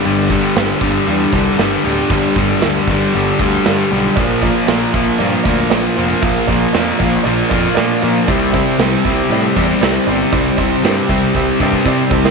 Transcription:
<<
  \new Staff \with { instrumentName = "Honky-tonk piano" } { \time 4/4 \key g \major \tempo 4 = 117 r1 | r1 | <f' bes' d''>8 <f' bes' d''>8 <f' bes' d''>8 <f' bes' e''>8 <f' bes' d''>8 <f' bes' d''>8 <f' bes' d''>8 <f' bes' c''>8 | <f' bes' e''>8 <f' bes' d''>8 <f' bes' d''>8 <f' bes' d''>8 <f' bes' d''>8 <f' bes' d''>8 <f' bes' d''>8 <f' bes' d''>8 |
<e' c'' d''>8 <e' c'' e''>8 <e' c'' e''>8 <e' c'' e''>8 <e' c'' d''>8 <e' c'' d''>8 <e' c'' d''>8 <e' c'' d''>8 | <e' c'' d''>8 <e' c'' d''>8 <e' c'' d''>8 <e' c'' e''>8 <e' c'' e''>8 <e' c'' d'' e''>8 <e' c'' d'' g''>8 <e' c'' d'' a''>8 | }
  \new Staff \with { instrumentName = "Overdriven electric guitar" } { \clef bass \time 4/4 \key g \major <g, d g>8 <g, d g>8 <g, d g>8 <g, d g>8 <g, d g>8 <g, d g>8 <g, d g>8 <g, d g>8 | <g, d g>8 <g, d g>8 <g, d g>8 <g, d g>8 <g, d g>8 <g, d g>8 <g, d g>8 <g, d g>8 | <bes, f bes>8 <bes, f bes>8 <bes, f bes>8 <bes, f bes>8 <bes, f bes>8 <bes, f bes>8 <bes, f bes>8 <bes, f bes>8 | <bes, f bes>8 <bes, f bes>8 <bes, f bes>8 <bes, f bes>8 <bes, f bes>8 <bes, f bes>8 <bes, f bes>8 <bes, f bes>8 |
<c g c'>8 <c g c'>8 <c g c'>8 <c g c'>8 <c g c'>8 <c g c'>8 <c g c'>8 <c g c'>8 | <c g c'>8 <c g c'>8 <c g c'>8 <c g c'>8 <c g c'>8 <c g c'>8 <c g c'>8 <c g c'>8 | }
  \new Staff \with { instrumentName = "Overdriven electric guitar" } { \clef bass \time 4/4 \key g \major <g, d g>8 <g, d g>8 <g, d g>8 <g, d g>8 <g, d g>8 <g, d g>8 <g, d g>8 <g, d g>8 | <g, d g>8 <g, d g>8 <g, d g>8 <g, d g>8 <g, d g>8 <g, d g>8 <g, d g>8 <g, d g>8 | <bes, f bes>8 <bes, f bes>8 <bes, f bes>8 <bes, f bes>8 <bes, f bes>8 <bes, f bes>8 <bes, f bes>8 <bes, f bes>8 | <bes, f bes>8 <bes, f bes>8 <bes, f bes>8 <bes, f bes>8 <bes, f bes>8 <bes, f bes>8 <bes, f bes>8 <bes, f bes>8 |
<c g c'>8 <c g c'>8 <c g c'>8 <c g c'>8 <c g c'>8 <c g c'>8 <c g c'>8 <c g c'>8 | <c g c'>8 <c g c'>8 <c g c'>8 <c g c'>8 <c g c'>8 <c g c'>8 <c g c'>8 <c g c'>8 | }
  \new Staff \with { instrumentName = "Picked electric bass" } { \clef bass \time 4/4 \key g \major g,,4 g,,8 g,,8 e,8 c,8 g,,8 d,,8 | g,,8 g,,8 d,8 g,,8 g,,8 d,8 g,8 b,,8 | bes,,4 bes,,8 bes,,8 g,8 d,8 bes,,8 f,,8 | bes,,8 bes,,8 f,8 bes,,8 bes,,8 f,8 bes,8 bes,8 |
c,4 c,8 c,8 a,8 e,8 c,8 g,,8 | c,8 c,8 g,8 c,8 c,8 g,8 c8 c,8 | }
  \new DrumStaff \with { instrumentName = "Drums" } \drummode { \time 4/4 hho8 bd8 <hho sn>8 bd8 hho8 bd8 <hho sn>4 | <hho bd>8 bd16 sn16 <hho sn>8 bd8 hho8 bd8 <hho sn>4 | <hho bd>8 <bd sn>8 <hho sn>8 bd8 hho8 bd8 <hho sn>4 | <hho bd>8 bd8 <hho sn>8 bd8 hho8 bd8 <hho sn>4 |
<hho bd>8 <bd sn>8 <hho sn>8 bd8 hho8 bd8 <hho sn>4 | <hho bd>8 bd8 <hho sn>8 bd8 bd8 bd16 bd16 bd8 bd16 sn16 | }
>>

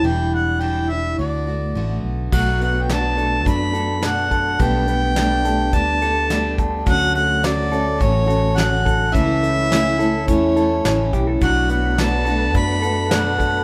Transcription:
<<
  \new Staff \with { instrumentName = "Harmonica" } { \time 4/4 \key b \minor \tempo 4 = 106 g''8 fis''8 g''8 e''8 d''4. r8 | fis''8 fis''16. g''32 a''4 b''4 fis''4 | g''2 a''4. r8 | fis''8 fis''8 d''4 cis''4 fis''4 |
e''2 cis''4. r8 | fis''8 fis''8 a''4 b''4 fis''4 | }
  \new Staff \with { instrumentName = "String section" } { \time 4/4 \key b \minor r1 | r1 | r1 | r1 |
r1 | <a' b' fis'' b''>1 | }
  \new Staff \with { instrumentName = "Clean electric guitar" } { \time 4/4 \key b \minor r1 | fis8 b8 d'8 a'8 d'8 a'8 d'8 a'8 | b8 b8 d'8 a'8 d'8 a'8 d'8 a'8 | fis8 a4 a'8 cis'8 a'8 cis'8 a'8 |
e8 a8 cis'8 a'8 cis'8 a'8 cis'8 g'16 a'16 | fis8 b8 d'8 a'8 d'8 a'8 d'8 a'8 | }
  \new Staff \with { instrumentName = "Steel-string acoustic guitar" } { \time 4/4 \key b \minor <e, b, e g d' e'>4 <e, b, e g d' e'>8 <e g d' e'>8 <d a b fis'>8 <a b fis'>8 <d a b fis'>4 | <b, fis a d' fis'>4 <b, fis a d' fis'>8 <a d' fis'>8 <fis a d' fis'>8 <a d' fis'>8 <b, fis a d' fis'>4 | <b, g a d' g'>4 <b, g a d' g'>8 <a d' g'>8 <g a d' g'>8 <a d' g'>8 <b, g a d' g'>4 | <d fis a cis' fis'>4 <d fis a cis' fis'>8 <a cis' fis'>8 <fis a cis' fis'>8 <a cis' fis'>8 <d fis a cis' fis'>4 |
<cis e a cis' e'>4 <cis e a cis' e'>8 <a cis' e'>8 <e a cis' e'>8 <a cis' e'>8 <cis e a cis' e'>4 | <b, fis a d' fis'>4 <b, fis a d' fis'>8 <a d' fis'>8 <fis a d' fis'>8 <a d' fis'>8 <b, fis a d' fis'>4 | }
  \new Staff \with { instrumentName = "Fingered electric bass" } { \clef bass \time 4/4 \key b \minor e,,2 d,4 a,,8 b,,8 | b,,2 fis,2 | b,,2 d,2 | d,2 a,,2 |
cis,2 e,4 a,,8 b,,8 | b,,2 fis,2 | }
  \new DrumStaff \with { instrumentName = "Drums" } \drummode { \time 4/4 r4 r4 r4 r4 | <cymc bd>8 hh8 <hh sn>8 hh8 <hh bd>8 hh8 <hh sn>8 <hh bd>8 | <hh bd>8 hh8 <hh sn>8 hh8 <hh bd>8 hh8 <hh sn>8 <hh bd>8 | <hh bd>8 hh8 <hh sn>8 hh8 <hh bd>8 hh8 <hh sn>8 <hh bd>8 |
<hh bd>8 hh8 <hh sn>8 hh8 <hh bd>8 hh8 <hh sn>8 <hh bd>8 | <hh bd>8 hh8 <hh sn>8 hh8 <hh bd>8 hh8 <hh sn>8 <hh bd>8 | }
>>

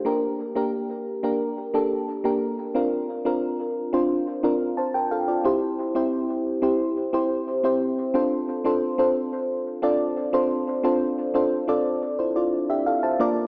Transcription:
\new Staff \with { instrumentName = "FM electric piano" } { \time 4/4 \key d \minor \tempo 4 = 89 << { r1 | r2. <c'' a''>16 <bes' g''>16 <a' f''>16 <f' d''>16~ | <f' d''>16 r2. r8. | r1 |
r2 <e' c''>16 <f' d''>8 <g' e''>16 <a' f''>16 <c'' a''>8 r16 | } \\ { <bes d' g' bes'>8 r16 <bes d' g' bes'>8. r16 <bes d' g' bes'>8 r16 <bes d' g' a'>8 r16 <bes d' g' bes'>8 r16 | <c' d' f' bes'>8 r16 <c' d' f' bes'>8. r16 <c' d' f' c''>8 r16 <c' d' f' bes'>8 r4 | <c' e' g' c''>8 r16 <c' e' g' c''>8. r16 <c' e' g' c''>8 r16 <c' e' g' c''>8 r16 <c' e' g' c''>8 r16 | <c' d' f' a' c''>8 r16 <c' d' f' a' c''>16 r16 <c' d' f' a' c''>4 r16 <c' d' f' a' d''>8 r16 <c' d' f' a' c''>8 r16 |
<c' d' f' a' c''>8 r16 <c' d' f' a' c''>16 r16 <c' d' f' a' d''>4 r4 r16 <bes d' f' bes' d''>8 | } >> }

